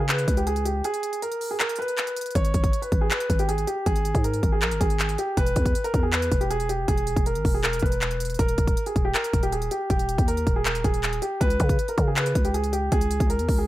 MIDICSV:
0, 0, Header, 1, 4, 480
1, 0, Start_track
1, 0, Tempo, 377358
1, 1074, Time_signature, 4, 2, 24, 8
1, 17390, End_track
2, 0, Start_track
2, 0, Title_t, "Grand piano"
2, 0, Program_c, 0, 0
2, 117, Note_on_c, 0, 71, 94
2, 454, Note_off_c, 0, 71, 0
2, 474, Note_on_c, 0, 67, 77
2, 586, Note_off_c, 0, 67, 0
2, 594, Note_on_c, 0, 68, 86
2, 818, Note_off_c, 0, 68, 0
2, 831, Note_on_c, 0, 67, 79
2, 1056, Note_off_c, 0, 67, 0
2, 1077, Note_on_c, 0, 68, 97
2, 1527, Note_off_c, 0, 68, 0
2, 1556, Note_on_c, 0, 70, 81
2, 1893, Note_off_c, 0, 70, 0
2, 1917, Note_on_c, 0, 68, 74
2, 2027, Note_off_c, 0, 68, 0
2, 2031, Note_on_c, 0, 70, 92
2, 2256, Note_off_c, 0, 70, 0
2, 2271, Note_on_c, 0, 71, 95
2, 2949, Note_off_c, 0, 71, 0
2, 2995, Note_on_c, 0, 73, 103
2, 3558, Note_off_c, 0, 73, 0
2, 3586, Note_on_c, 0, 71, 76
2, 3813, Note_off_c, 0, 71, 0
2, 3831, Note_on_c, 0, 68, 84
2, 3944, Note_off_c, 0, 68, 0
2, 3958, Note_on_c, 0, 71, 97
2, 4295, Note_off_c, 0, 71, 0
2, 4318, Note_on_c, 0, 67, 85
2, 4428, Note_off_c, 0, 67, 0
2, 4433, Note_on_c, 0, 68, 89
2, 4657, Note_off_c, 0, 68, 0
2, 4672, Note_on_c, 0, 67, 79
2, 4896, Note_off_c, 0, 67, 0
2, 4913, Note_on_c, 0, 68, 103
2, 5365, Note_off_c, 0, 68, 0
2, 5396, Note_on_c, 0, 70, 86
2, 5733, Note_off_c, 0, 70, 0
2, 5754, Note_on_c, 0, 68, 84
2, 5865, Note_off_c, 0, 68, 0
2, 5878, Note_on_c, 0, 70, 87
2, 6099, Note_off_c, 0, 70, 0
2, 6112, Note_on_c, 0, 68, 90
2, 6564, Note_off_c, 0, 68, 0
2, 6597, Note_on_c, 0, 67, 84
2, 6819, Note_off_c, 0, 67, 0
2, 6837, Note_on_c, 0, 71, 105
2, 7399, Note_off_c, 0, 71, 0
2, 7432, Note_on_c, 0, 70, 87
2, 7656, Note_off_c, 0, 70, 0
2, 7667, Note_on_c, 0, 68, 83
2, 7782, Note_off_c, 0, 68, 0
2, 7787, Note_on_c, 0, 71, 94
2, 8129, Note_off_c, 0, 71, 0
2, 8150, Note_on_c, 0, 67, 83
2, 8264, Note_off_c, 0, 67, 0
2, 8275, Note_on_c, 0, 68, 96
2, 8498, Note_off_c, 0, 68, 0
2, 8513, Note_on_c, 0, 67, 78
2, 8737, Note_off_c, 0, 67, 0
2, 8751, Note_on_c, 0, 68, 100
2, 9204, Note_off_c, 0, 68, 0
2, 9239, Note_on_c, 0, 70, 84
2, 9575, Note_off_c, 0, 70, 0
2, 9594, Note_on_c, 0, 68, 75
2, 9706, Note_off_c, 0, 68, 0
2, 9713, Note_on_c, 0, 70, 97
2, 9937, Note_off_c, 0, 70, 0
2, 9952, Note_on_c, 0, 71, 90
2, 10630, Note_off_c, 0, 71, 0
2, 10671, Note_on_c, 0, 70, 101
2, 11236, Note_off_c, 0, 70, 0
2, 11275, Note_on_c, 0, 68, 73
2, 11498, Note_off_c, 0, 68, 0
2, 11509, Note_on_c, 0, 67, 87
2, 11623, Note_off_c, 0, 67, 0
2, 11630, Note_on_c, 0, 70, 96
2, 11970, Note_off_c, 0, 70, 0
2, 11996, Note_on_c, 0, 67, 84
2, 12107, Note_off_c, 0, 67, 0
2, 12112, Note_on_c, 0, 68, 79
2, 12337, Note_off_c, 0, 68, 0
2, 12355, Note_on_c, 0, 67, 81
2, 12575, Note_off_c, 0, 67, 0
2, 12594, Note_on_c, 0, 67, 91
2, 13045, Note_off_c, 0, 67, 0
2, 13074, Note_on_c, 0, 70, 89
2, 13412, Note_off_c, 0, 70, 0
2, 13433, Note_on_c, 0, 68, 86
2, 13545, Note_off_c, 0, 68, 0
2, 13552, Note_on_c, 0, 70, 82
2, 13777, Note_off_c, 0, 70, 0
2, 13795, Note_on_c, 0, 68, 86
2, 14246, Note_off_c, 0, 68, 0
2, 14273, Note_on_c, 0, 67, 82
2, 14497, Note_off_c, 0, 67, 0
2, 14508, Note_on_c, 0, 71, 110
2, 15075, Note_off_c, 0, 71, 0
2, 15118, Note_on_c, 0, 70, 73
2, 15340, Note_off_c, 0, 70, 0
2, 15360, Note_on_c, 0, 68, 77
2, 15469, Note_off_c, 0, 68, 0
2, 15475, Note_on_c, 0, 71, 92
2, 15813, Note_off_c, 0, 71, 0
2, 15833, Note_on_c, 0, 67, 76
2, 15945, Note_off_c, 0, 67, 0
2, 15953, Note_on_c, 0, 68, 87
2, 16177, Note_off_c, 0, 68, 0
2, 16190, Note_on_c, 0, 67, 77
2, 16415, Note_off_c, 0, 67, 0
2, 16437, Note_on_c, 0, 68, 102
2, 16887, Note_off_c, 0, 68, 0
2, 16915, Note_on_c, 0, 70, 80
2, 17253, Note_off_c, 0, 70, 0
2, 17277, Note_on_c, 0, 68, 75
2, 17387, Note_off_c, 0, 68, 0
2, 17390, End_track
3, 0, Start_track
3, 0, Title_t, "808-style bass"
3, 0, Program_c, 1, 38
3, 0, Note_on_c, 1, 49, 106
3, 335, Note_off_c, 1, 49, 0
3, 354, Note_on_c, 1, 37, 106
3, 1045, Note_off_c, 1, 37, 0
3, 2993, Note_on_c, 1, 32, 112
3, 3224, Note_off_c, 1, 32, 0
3, 3235, Note_on_c, 1, 32, 109
3, 3465, Note_off_c, 1, 32, 0
3, 3714, Note_on_c, 1, 32, 107
3, 3944, Note_off_c, 1, 32, 0
3, 4194, Note_on_c, 1, 32, 104
3, 4655, Note_off_c, 1, 32, 0
3, 4914, Note_on_c, 1, 32, 114
3, 5259, Note_off_c, 1, 32, 0
3, 5274, Note_on_c, 1, 44, 101
3, 5619, Note_off_c, 1, 44, 0
3, 5635, Note_on_c, 1, 32, 108
3, 5874, Note_on_c, 1, 34, 97
3, 5893, Note_off_c, 1, 32, 0
3, 5994, Note_on_c, 1, 32, 102
3, 6014, Note_off_c, 1, 34, 0
3, 6108, Note_off_c, 1, 32, 0
3, 6114, Note_on_c, 1, 32, 109
3, 6575, Note_off_c, 1, 32, 0
3, 6833, Note_on_c, 1, 28, 109
3, 7064, Note_off_c, 1, 28, 0
3, 7074, Note_on_c, 1, 40, 110
3, 7304, Note_off_c, 1, 40, 0
3, 7554, Note_on_c, 1, 40, 109
3, 8015, Note_off_c, 1, 40, 0
3, 8034, Note_on_c, 1, 28, 107
3, 8725, Note_off_c, 1, 28, 0
3, 8754, Note_on_c, 1, 28, 111
3, 9099, Note_off_c, 1, 28, 0
3, 9113, Note_on_c, 1, 28, 108
3, 9354, Note_on_c, 1, 32, 101
3, 9373, Note_off_c, 1, 28, 0
3, 9468, Note_off_c, 1, 32, 0
3, 9475, Note_on_c, 1, 28, 106
3, 9935, Note_off_c, 1, 28, 0
3, 9954, Note_on_c, 1, 28, 106
3, 10645, Note_off_c, 1, 28, 0
3, 10674, Note_on_c, 1, 27, 110
3, 10904, Note_off_c, 1, 27, 0
3, 10915, Note_on_c, 1, 27, 111
3, 11145, Note_off_c, 1, 27, 0
3, 11394, Note_on_c, 1, 27, 108
3, 11624, Note_off_c, 1, 27, 0
3, 11874, Note_on_c, 1, 27, 107
3, 12334, Note_off_c, 1, 27, 0
3, 12593, Note_on_c, 1, 27, 115
3, 12939, Note_off_c, 1, 27, 0
3, 12953, Note_on_c, 1, 39, 103
3, 13299, Note_off_c, 1, 39, 0
3, 13314, Note_on_c, 1, 27, 109
3, 13553, Note_on_c, 1, 28, 103
3, 13573, Note_off_c, 1, 27, 0
3, 13673, Note_on_c, 1, 27, 107
3, 13692, Note_off_c, 1, 28, 0
3, 13787, Note_off_c, 1, 27, 0
3, 13794, Note_on_c, 1, 27, 107
3, 14254, Note_off_c, 1, 27, 0
3, 14514, Note_on_c, 1, 37, 112
3, 14744, Note_off_c, 1, 37, 0
3, 14755, Note_on_c, 1, 49, 111
3, 14985, Note_off_c, 1, 49, 0
3, 15235, Note_on_c, 1, 49, 109
3, 15695, Note_off_c, 1, 49, 0
3, 15714, Note_on_c, 1, 37, 103
3, 16405, Note_off_c, 1, 37, 0
3, 16433, Note_on_c, 1, 37, 114
3, 16779, Note_off_c, 1, 37, 0
3, 16793, Note_on_c, 1, 37, 110
3, 17033, Note_on_c, 1, 40, 101
3, 17052, Note_off_c, 1, 37, 0
3, 17147, Note_off_c, 1, 40, 0
3, 17154, Note_on_c, 1, 37, 101
3, 17390, Note_off_c, 1, 37, 0
3, 17390, End_track
4, 0, Start_track
4, 0, Title_t, "Drums"
4, 113, Note_on_c, 9, 39, 121
4, 113, Note_on_c, 9, 42, 85
4, 235, Note_off_c, 9, 42, 0
4, 235, Note_on_c, 9, 42, 76
4, 240, Note_off_c, 9, 39, 0
4, 354, Note_off_c, 9, 42, 0
4, 354, Note_on_c, 9, 36, 91
4, 354, Note_on_c, 9, 42, 88
4, 473, Note_off_c, 9, 42, 0
4, 473, Note_on_c, 9, 42, 56
4, 481, Note_off_c, 9, 36, 0
4, 595, Note_off_c, 9, 42, 0
4, 595, Note_on_c, 9, 42, 81
4, 713, Note_off_c, 9, 42, 0
4, 713, Note_on_c, 9, 42, 58
4, 833, Note_off_c, 9, 42, 0
4, 833, Note_on_c, 9, 42, 82
4, 960, Note_off_c, 9, 42, 0
4, 1073, Note_on_c, 9, 42, 99
4, 1192, Note_off_c, 9, 42, 0
4, 1192, Note_on_c, 9, 42, 64
4, 1312, Note_off_c, 9, 42, 0
4, 1312, Note_on_c, 9, 42, 84
4, 1436, Note_off_c, 9, 42, 0
4, 1436, Note_on_c, 9, 42, 62
4, 1557, Note_off_c, 9, 42, 0
4, 1557, Note_on_c, 9, 42, 79
4, 1674, Note_off_c, 9, 42, 0
4, 1674, Note_on_c, 9, 42, 61
4, 1794, Note_on_c, 9, 46, 84
4, 1801, Note_off_c, 9, 42, 0
4, 1922, Note_off_c, 9, 46, 0
4, 2033, Note_on_c, 9, 39, 118
4, 2034, Note_on_c, 9, 42, 84
4, 2154, Note_off_c, 9, 42, 0
4, 2154, Note_on_c, 9, 42, 75
4, 2160, Note_off_c, 9, 39, 0
4, 2234, Note_off_c, 9, 42, 0
4, 2234, Note_on_c, 9, 42, 62
4, 2314, Note_off_c, 9, 42, 0
4, 2314, Note_on_c, 9, 42, 45
4, 2394, Note_off_c, 9, 42, 0
4, 2394, Note_on_c, 9, 42, 56
4, 2514, Note_on_c, 9, 39, 96
4, 2515, Note_off_c, 9, 42, 0
4, 2515, Note_on_c, 9, 42, 81
4, 2634, Note_off_c, 9, 42, 0
4, 2634, Note_on_c, 9, 42, 59
4, 2641, Note_off_c, 9, 39, 0
4, 2754, Note_off_c, 9, 42, 0
4, 2754, Note_on_c, 9, 42, 85
4, 2814, Note_off_c, 9, 42, 0
4, 2814, Note_on_c, 9, 42, 74
4, 2873, Note_off_c, 9, 42, 0
4, 2873, Note_on_c, 9, 42, 60
4, 2933, Note_off_c, 9, 42, 0
4, 2933, Note_on_c, 9, 42, 48
4, 2993, Note_off_c, 9, 42, 0
4, 2993, Note_on_c, 9, 36, 104
4, 2993, Note_on_c, 9, 42, 98
4, 3112, Note_off_c, 9, 42, 0
4, 3112, Note_on_c, 9, 42, 65
4, 3120, Note_off_c, 9, 36, 0
4, 3231, Note_off_c, 9, 42, 0
4, 3231, Note_on_c, 9, 42, 83
4, 3235, Note_on_c, 9, 36, 89
4, 3353, Note_off_c, 9, 36, 0
4, 3353, Note_on_c, 9, 36, 103
4, 3355, Note_off_c, 9, 42, 0
4, 3355, Note_on_c, 9, 42, 63
4, 3476, Note_off_c, 9, 42, 0
4, 3476, Note_on_c, 9, 42, 78
4, 3480, Note_off_c, 9, 36, 0
4, 3594, Note_off_c, 9, 42, 0
4, 3594, Note_on_c, 9, 42, 61
4, 3714, Note_off_c, 9, 42, 0
4, 3714, Note_on_c, 9, 36, 99
4, 3714, Note_on_c, 9, 42, 58
4, 3841, Note_off_c, 9, 36, 0
4, 3841, Note_off_c, 9, 42, 0
4, 3953, Note_on_c, 9, 39, 124
4, 3953, Note_on_c, 9, 42, 82
4, 4075, Note_off_c, 9, 42, 0
4, 4075, Note_on_c, 9, 42, 77
4, 4080, Note_off_c, 9, 39, 0
4, 4194, Note_off_c, 9, 42, 0
4, 4194, Note_on_c, 9, 36, 90
4, 4194, Note_on_c, 9, 42, 83
4, 4313, Note_off_c, 9, 42, 0
4, 4313, Note_on_c, 9, 42, 57
4, 4321, Note_off_c, 9, 36, 0
4, 4436, Note_off_c, 9, 42, 0
4, 4436, Note_on_c, 9, 42, 82
4, 4554, Note_off_c, 9, 42, 0
4, 4554, Note_on_c, 9, 42, 59
4, 4674, Note_off_c, 9, 42, 0
4, 4674, Note_on_c, 9, 42, 80
4, 4801, Note_off_c, 9, 42, 0
4, 4913, Note_on_c, 9, 42, 98
4, 4914, Note_on_c, 9, 36, 105
4, 5033, Note_off_c, 9, 42, 0
4, 5033, Note_on_c, 9, 42, 65
4, 5041, Note_off_c, 9, 36, 0
4, 5152, Note_off_c, 9, 42, 0
4, 5152, Note_on_c, 9, 42, 82
4, 5274, Note_on_c, 9, 36, 102
4, 5276, Note_off_c, 9, 42, 0
4, 5276, Note_on_c, 9, 42, 63
4, 5397, Note_off_c, 9, 42, 0
4, 5397, Note_on_c, 9, 42, 78
4, 5401, Note_off_c, 9, 36, 0
4, 5515, Note_off_c, 9, 42, 0
4, 5515, Note_on_c, 9, 42, 61
4, 5635, Note_off_c, 9, 42, 0
4, 5635, Note_on_c, 9, 36, 100
4, 5635, Note_on_c, 9, 42, 60
4, 5762, Note_off_c, 9, 36, 0
4, 5763, Note_off_c, 9, 42, 0
4, 5874, Note_on_c, 9, 39, 120
4, 5875, Note_on_c, 9, 42, 85
4, 5996, Note_off_c, 9, 42, 0
4, 5996, Note_on_c, 9, 42, 77
4, 6002, Note_off_c, 9, 39, 0
4, 6114, Note_on_c, 9, 36, 93
4, 6115, Note_off_c, 9, 42, 0
4, 6115, Note_on_c, 9, 42, 85
4, 6234, Note_off_c, 9, 42, 0
4, 6234, Note_on_c, 9, 42, 56
4, 6241, Note_off_c, 9, 36, 0
4, 6354, Note_on_c, 9, 39, 97
4, 6356, Note_off_c, 9, 42, 0
4, 6356, Note_on_c, 9, 42, 80
4, 6474, Note_off_c, 9, 42, 0
4, 6474, Note_on_c, 9, 42, 60
4, 6481, Note_off_c, 9, 39, 0
4, 6593, Note_off_c, 9, 42, 0
4, 6593, Note_on_c, 9, 42, 86
4, 6721, Note_off_c, 9, 42, 0
4, 6833, Note_on_c, 9, 42, 101
4, 6834, Note_on_c, 9, 36, 104
4, 6951, Note_off_c, 9, 42, 0
4, 6951, Note_on_c, 9, 42, 63
4, 6961, Note_off_c, 9, 36, 0
4, 7071, Note_off_c, 9, 42, 0
4, 7071, Note_on_c, 9, 42, 83
4, 7075, Note_on_c, 9, 36, 90
4, 7193, Note_off_c, 9, 36, 0
4, 7193, Note_on_c, 9, 36, 102
4, 7195, Note_off_c, 9, 42, 0
4, 7195, Note_on_c, 9, 42, 65
4, 7316, Note_off_c, 9, 42, 0
4, 7316, Note_on_c, 9, 42, 79
4, 7320, Note_off_c, 9, 36, 0
4, 7434, Note_off_c, 9, 42, 0
4, 7434, Note_on_c, 9, 42, 61
4, 7554, Note_off_c, 9, 42, 0
4, 7554, Note_on_c, 9, 36, 99
4, 7554, Note_on_c, 9, 42, 60
4, 7681, Note_off_c, 9, 36, 0
4, 7681, Note_off_c, 9, 42, 0
4, 7793, Note_on_c, 9, 39, 118
4, 7793, Note_on_c, 9, 42, 85
4, 7916, Note_off_c, 9, 42, 0
4, 7916, Note_on_c, 9, 42, 77
4, 7920, Note_off_c, 9, 39, 0
4, 8034, Note_off_c, 9, 42, 0
4, 8034, Note_on_c, 9, 36, 93
4, 8034, Note_on_c, 9, 42, 85
4, 8153, Note_off_c, 9, 42, 0
4, 8153, Note_on_c, 9, 42, 55
4, 8161, Note_off_c, 9, 36, 0
4, 8276, Note_off_c, 9, 42, 0
4, 8276, Note_on_c, 9, 42, 84
4, 8394, Note_off_c, 9, 42, 0
4, 8394, Note_on_c, 9, 42, 58
4, 8514, Note_off_c, 9, 42, 0
4, 8514, Note_on_c, 9, 42, 83
4, 8641, Note_off_c, 9, 42, 0
4, 8754, Note_on_c, 9, 36, 105
4, 8754, Note_on_c, 9, 42, 95
4, 8872, Note_off_c, 9, 42, 0
4, 8872, Note_on_c, 9, 42, 63
4, 8881, Note_off_c, 9, 36, 0
4, 8992, Note_off_c, 9, 42, 0
4, 8992, Note_on_c, 9, 42, 83
4, 9113, Note_on_c, 9, 36, 103
4, 9115, Note_off_c, 9, 42, 0
4, 9115, Note_on_c, 9, 42, 65
4, 9237, Note_off_c, 9, 42, 0
4, 9237, Note_on_c, 9, 42, 75
4, 9241, Note_off_c, 9, 36, 0
4, 9355, Note_off_c, 9, 42, 0
4, 9355, Note_on_c, 9, 42, 61
4, 9475, Note_on_c, 9, 36, 102
4, 9475, Note_on_c, 9, 46, 83
4, 9482, Note_off_c, 9, 42, 0
4, 9602, Note_off_c, 9, 36, 0
4, 9602, Note_off_c, 9, 46, 0
4, 9714, Note_on_c, 9, 39, 121
4, 9714, Note_on_c, 9, 42, 86
4, 9834, Note_off_c, 9, 42, 0
4, 9834, Note_on_c, 9, 42, 77
4, 9841, Note_off_c, 9, 39, 0
4, 9914, Note_off_c, 9, 42, 0
4, 9914, Note_on_c, 9, 42, 61
4, 9954, Note_on_c, 9, 36, 93
4, 9994, Note_off_c, 9, 42, 0
4, 9994, Note_on_c, 9, 42, 45
4, 10073, Note_off_c, 9, 42, 0
4, 10073, Note_on_c, 9, 42, 59
4, 10081, Note_off_c, 9, 36, 0
4, 10194, Note_on_c, 9, 39, 95
4, 10196, Note_off_c, 9, 42, 0
4, 10196, Note_on_c, 9, 42, 85
4, 10314, Note_off_c, 9, 42, 0
4, 10314, Note_on_c, 9, 42, 59
4, 10321, Note_off_c, 9, 39, 0
4, 10434, Note_off_c, 9, 42, 0
4, 10434, Note_on_c, 9, 42, 85
4, 10494, Note_off_c, 9, 42, 0
4, 10494, Note_on_c, 9, 42, 71
4, 10554, Note_off_c, 9, 42, 0
4, 10554, Note_on_c, 9, 42, 58
4, 10614, Note_off_c, 9, 42, 0
4, 10614, Note_on_c, 9, 42, 48
4, 10674, Note_off_c, 9, 42, 0
4, 10674, Note_on_c, 9, 36, 104
4, 10674, Note_on_c, 9, 42, 97
4, 10793, Note_off_c, 9, 42, 0
4, 10793, Note_on_c, 9, 42, 66
4, 10801, Note_off_c, 9, 36, 0
4, 10912, Note_off_c, 9, 42, 0
4, 10912, Note_on_c, 9, 42, 83
4, 10915, Note_on_c, 9, 36, 94
4, 11033, Note_off_c, 9, 36, 0
4, 11033, Note_on_c, 9, 36, 105
4, 11036, Note_off_c, 9, 42, 0
4, 11036, Note_on_c, 9, 42, 64
4, 11156, Note_off_c, 9, 42, 0
4, 11156, Note_on_c, 9, 42, 80
4, 11161, Note_off_c, 9, 36, 0
4, 11274, Note_off_c, 9, 42, 0
4, 11274, Note_on_c, 9, 42, 62
4, 11394, Note_off_c, 9, 42, 0
4, 11394, Note_on_c, 9, 36, 97
4, 11394, Note_on_c, 9, 42, 58
4, 11521, Note_off_c, 9, 42, 0
4, 11522, Note_off_c, 9, 36, 0
4, 11634, Note_on_c, 9, 39, 120
4, 11634, Note_on_c, 9, 42, 83
4, 11756, Note_off_c, 9, 42, 0
4, 11756, Note_on_c, 9, 42, 77
4, 11761, Note_off_c, 9, 39, 0
4, 11874, Note_off_c, 9, 42, 0
4, 11874, Note_on_c, 9, 36, 92
4, 11874, Note_on_c, 9, 42, 87
4, 11993, Note_off_c, 9, 42, 0
4, 11993, Note_on_c, 9, 42, 58
4, 12001, Note_off_c, 9, 36, 0
4, 12115, Note_off_c, 9, 42, 0
4, 12115, Note_on_c, 9, 42, 84
4, 12233, Note_off_c, 9, 42, 0
4, 12233, Note_on_c, 9, 42, 61
4, 12353, Note_off_c, 9, 42, 0
4, 12353, Note_on_c, 9, 42, 84
4, 12480, Note_off_c, 9, 42, 0
4, 12593, Note_on_c, 9, 36, 105
4, 12593, Note_on_c, 9, 42, 95
4, 12712, Note_off_c, 9, 42, 0
4, 12712, Note_on_c, 9, 42, 64
4, 12720, Note_off_c, 9, 36, 0
4, 12832, Note_off_c, 9, 42, 0
4, 12832, Note_on_c, 9, 42, 82
4, 12953, Note_on_c, 9, 36, 107
4, 12955, Note_off_c, 9, 42, 0
4, 12955, Note_on_c, 9, 42, 66
4, 13076, Note_off_c, 9, 42, 0
4, 13076, Note_on_c, 9, 42, 80
4, 13080, Note_off_c, 9, 36, 0
4, 13194, Note_off_c, 9, 42, 0
4, 13194, Note_on_c, 9, 42, 60
4, 13314, Note_off_c, 9, 42, 0
4, 13314, Note_on_c, 9, 36, 98
4, 13314, Note_on_c, 9, 42, 61
4, 13441, Note_off_c, 9, 36, 0
4, 13441, Note_off_c, 9, 42, 0
4, 13553, Note_on_c, 9, 39, 122
4, 13553, Note_on_c, 9, 42, 81
4, 13676, Note_off_c, 9, 42, 0
4, 13676, Note_on_c, 9, 42, 76
4, 13680, Note_off_c, 9, 39, 0
4, 13794, Note_off_c, 9, 42, 0
4, 13794, Note_on_c, 9, 36, 91
4, 13794, Note_on_c, 9, 42, 89
4, 13913, Note_off_c, 9, 42, 0
4, 13913, Note_on_c, 9, 42, 55
4, 13921, Note_off_c, 9, 36, 0
4, 14034, Note_on_c, 9, 39, 97
4, 14036, Note_off_c, 9, 42, 0
4, 14036, Note_on_c, 9, 42, 80
4, 14154, Note_off_c, 9, 42, 0
4, 14154, Note_on_c, 9, 42, 58
4, 14161, Note_off_c, 9, 39, 0
4, 14273, Note_off_c, 9, 42, 0
4, 14273, Note_on_c, 9, 42, 85
4, 14400, Note_off_c, 9, 42, 0
4, 14513, Note_on_c, 9, 36, 106
4, 14513, Note_on_c, 9, 42, 99
4, 14632, Note_off_c, 9, 42, 0
4, 14632, Note_on_c, 9, 42, 65
4, 14641, Note_off_c, 9, 36, 0
4, 14751, Note_off_c, 9, 42, 0
4, 14751, Note_on_c, 9, 42, 82
4, 14755, Note_on_c, 9, 36, 91
4, 14873, Note_off_c, 9, 36, 0
4, 14873, Note_on_c, 9, 36, 99
4, 14875, Note_off_c, 9, 42, 0
4, 14875, Note_on_c, 9, 42, 65
4, 14996, Note_off_c, 9, 42, 0
4, 14996, Note_on_c, 9, 42, 77
4, 15000, Note_off_c, 9, 36, 0
4, 15114, Note_off_c, 9, 42, 0
4, 15114, Note_on_c, 9, 42, 59
4, 15234, Note_off_c, 9, 42, 0
4, 15234, Note_on_c, 9, 42, 59
4, 15235, Note_on_c, 9, 36, 102
4, 15361, Note_off_c, 9, 42, 0
4, 15362, Note_off_c, 9, 36, 0
4, 15473, Note_on_c, 9, 39, 119
4, 15474, Note_on_c, 9, 42, 84
4, 15595, Note_off_c, 9, 42, 0
4, 15595, Note_on_c, 9, 42, 77
4, 15601, Note_off_c, 9, 39, 0
4, 15713, Note_off_c, 9, 42, 0
4, 15713, Note_on_c, 9, 42, 85
4, 15714, Note_on_c, 9, 36, 93
4, 15832, Note_off_c, 9, 42, 0
4, 15832, Note_on_c, 9, 42, 58
4, 15841, Note_off_c, 9, 36, 0
4, 15955, Note_off_c, 9, 42, 0
4, 15955, Note_on_c, 9, 42, 82
4, 16073, Note_off_c, 9, 42, 0
4, 16073, Note_on_c, 9, 42, 59
4, 16193, Note_off_c, 9, 42, 0
4, 16193, Note_on_c, 9, 42, 84
4, 16320, Note_off_c, 9, 42, 0
4, 16433, Note_on_c, 9, 36, 103
4, 16433, Note_on_c, 9, 42, 101
4, 16552, Note_off_c, 9, 42, 0
4, 16552, Note_on_c, 9, 42, 63
4, 16561, Note_off_c, 9, 36, 0
4, 16672, Note_off_c, 9, 42, 0
4, 16672, Note_on_c, 9, 42, 83
4, 16793, Note_on_c, 9, 36, 106
4, 16795, Note_off_c, 9, 42, 0
4, 16795, Note_on_c, 9, 42, 65
4, 16916, Note_off_c, 9, 42, 0
4, 16916, Note_on_c, 9, 42, 75
4, 16921, Note_off_c, 9, 36, 0
4, 17034, Note_off_c, 9, 42, 0
4, 17034, Note_on_c, 9, 42, 60
4, 17154, Note_on_c, 9, 36, 97
4, 17154, Note_on_c, 9, 46, 84
4, 17161, Note_off_c, 9, 42, 0
4, 17281, Note_off_c, 9, 46, 0
4, 17282, Note_off_c, 9, 36, 0
4, 17390, End_track
0, 0, End_of_file